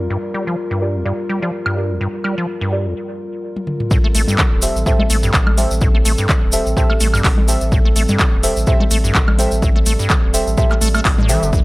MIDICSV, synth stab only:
0, 0, Header, 1, 2, 480
1, 0, Start_track
1, 0, Tempo, 476190
1, 102, Time_signature, 4, 2, 24, 8
1, 11737, End_track
2, 0, Start_track
2, 0, Title_t, "Synth stab"
2, 0, Program_c, 0, 62
2, 822, Note_on_c, 0, 65, 79
2, 822, Note_on_c, 0, 67, 69
2, 822, Note_on_c, 0, 70, 72
2, 823, Note_on_c, 0, 74, 84
2, 967, Note_off_c, 0, 65, 0
2, 967, Note_off_c, 0, 67, 0
2, 967, Note_off_c, 0, 70, 0
2, 968, Note_off_c, 0, 74, 0
2, 1062, Note_on_c, 0, 65, 80
2, 1062, Note_on_c, 0, 67, 72
2, 1062, Note_on_c, 0, 70, 74
2, 1062, Note_on_c, 0, 74, 87
2, 1207, Note_off_c, 0, 65, 0
2, 1207, Note_off_c, 0, 67, 0
2, 1207, Note_off_c, 0, 70, 0
2, 1207, Note_off_c, 0, 74, 0
2, 1433, Note_on_c, 0, 65, 76
2, 1433, Note_on_c, 0, 67, 69
2, 1433, Note_on_c, 0, 70, 68
2, 1434, Note_on_c, 0, 74, 85
2, 1558, Note_off_c, 0, 65, 0
2, 1558, Note_off_c, 0, 67, 0
2, 1558, Note_off_c, 0, 70, 0
2, 1558, Note_off_c, 0, 74, 0
2, 1781, Note_on_c, 0, 67, 73
2, 1781, Note_on_c, 0, 70, 74
2, 1781, Note_on_c, 0, 74, 86
2, 1782, Note_on_c, 0, 65, 78
2, 1927, Note_off_c, 0, 65, 0
2, 1927, Note_off_c, 0, 67, 0
2, 1927, Note_off_c, 0, 70, 0
2, 1927, Note_off_c, 0, 74, 0
2, 2740, Note_on_c, 0, 70, 70
2, 2741, Note_on_c, 0, 65, 76
2, 2741, Note_on_c, 0, 67, 69
2, 2741, Note_on_c, 0, 74, 87
2, 2887, Note_off_c, 0, 65, 0
2, 2887, Note_off_c, 0, 67, 0
2, 2887, Note_off_c, 0, 70, 0
2, 2887, Note_off_c, 0, 74, 0
2, 4661, Note_on_c, 0, 67, 82
2, 4661, Note_on_c, 0, 69, 75
2, 4661, Note_on_c, 0, 72, 78
2, 4661, Note_on_c, 0, 76, 92
2, 4807, Note_off_c, 0, 67, 0
2, 4807, Note_off_c, 0, 69, 0
2, 4807, Note_off_c, 0, 72, 0
2, 4807, Note_off_c, 0, 76, 0
2, 4901, Note_on_c, 0, 67, 83
2, 4901, Note_on_c, 0, 69, 79
2, 4901, Note_on_c, 0, 72, 78
2, 4902, Note_on_c, 0, 76, 96
2, 5047, Note_off_c, 0, 67, 0
2, 5047, Note_off_c, 0, 69, 0
2, 5047, Note_off_c, 0, 72, 0
2, 5047, Note_off_c, 0, 76, 0
2, 5621, Note_on_c, 0, 67, 94
2, 5621, Note_on_c, 0, 69, 83
2, 5621, Note_on_c, 0, 72, 83
2, 5621, Note_on_c, 0, 76, 100
2, 5767, Note_off_c, 0, 67, 0
2, 5767, Note_off_c, 0, 69, 0
2, 5767, Note_off_c, 0, 72, 0
2, 5767, Note_off_c, 0, 76, 0
2, 6581, Note_on_c, 0, 67, 85
2, 6581, Note_on_c, 0, 69, 77
2, 6581, Note_on_c, 0, 72, 75
2, 6581, Note_on_c, 0, 76, 92
2, 6727, Note_off_c, 0, 67, 0
2, 6727, Note_off_c, 0, 69, 0
2, 6727, Note_off_c, 0, 72, 0
2, 6727, Note_off_c, 0, 76, 0
2, 6822, Note_on_c, 0, 67, 83
2, 6822, Note_on_c, 0, 69, 80
2, 6822, Note_on_c, 0, 72, 78
2, 6822, Note_on_c, 0, 76, 94
2, 6967, Note_off_c, 0, 67, 0
2, 6967, Note_off_c, 0, 69, 0
2, 6967, Note_off_c, 0, 72, 0
2, 6968, Note_off_c, 0, 76, 0
2, 7541, Note_on_c, 0, 67, 92
2, 7541, Note_on_c, 0, 69, 87
2, 7541, Note_on_c, 0, 72, 84
2, 7541, Note_on_c, 0, 76, 102
2, 7687, Note_off_c, 0, 67, 0
2, 7687, Note_off_c, 0, 69, 0
2, 7687, Note_off_c, 0, 72, 0
2, 7687, Note_off_c, 0, 76, 0
2, 8500, Note_on_c, 0, 67, 84
2, 8500, Note_on_c, 0, 72, 76
2, 8501, Note_on_c, 0, 69, 76
2, 8501, Note_on_c, 0, 76, 91
2, 8647, Note_off_c, 0, 67, 0
2, 8647, Note_off_c, 0, 69, 0
2, 8647, Note_off_c, 0, 72, 0
2, 8647, Note_off_c, 0, 76, 0
2, 8741, Note_on_c, 0, 67, 84
2, 8741, Note_on_c, 0, 69, 77
2, 8741, Note_on_c, 0, 72, 78
2, 8741, Note_on_c, 0, 76, 92
2, 8887, Note_off_c, 0, 67, 0
2, 8887, Note_off_c, 0, 69, 0
2, 8887, Note_off_c, 0, 72, 0
2, 8887, Note_off_c, 0, 76, 0
2, 9462, Note_on_c, 0, 67, 94
2, 9462, Note_on_c, 0, 69, 85
2, 9462, Note_on_c, 0, 72, 84
2, 9462, Note_on_c, 0, 76, 97
2, 9607, Note_off_c, 0, 67, 0
2, 9607, Note_off_c, 0, 69, 0
2, 9607, Note_off_c, 0, 72, 0
2, 9607, Note_off_c, 0, 76, 0
2, 10420, Note_on_c, 0, 67, 81
2, 10420, Note_on_c, 0, 69, 76
2, 10420, Note_on_c, 0, 72, 77
2, 10420, Note_on_c, 0, 76, 93
2, 10566, Note_off_c, 0, 67, 0
2, 10566, Note_off_c, 0, 69, 0
2, 10566, Note_off_c, 0, 72, 0
2, 10566, Note_off_c, 0, 76, 0
2, 10660, Note_on_c, 0, 67, 82
2, 10660, Note_on_c, 0, 69, 77
2, 10660, Note_on_c, 0, 72, 79
2, 10661, Note_on_c, 0, 76, 97
2, 10806, Note_off_c, 0, 67, 0
2, 10806, Note_off_c, 0, 69, 0
2, 10807, Note_off_c, 0, 72, 0
2, 10807, Note_off_c, 0, 76, 0
2, 11381, Note_on_c, 0, 67, 91
2, 11381, Note_on_c, 0, 69, 83
2, 11381, Note_on_c, 0, 72, 86
2, 11381, Note_on_c, 0, 76, 97
2, 11527, Note_off_c, 0, 67, 0
2, 11527, Note_off_c, 0, 69, 0
2, 11527, Note_off_c, 0, 72, 0
2, 11527, Note_off_c, 0, 76, 0
2, 11737, End_track
0, 0, End_of_file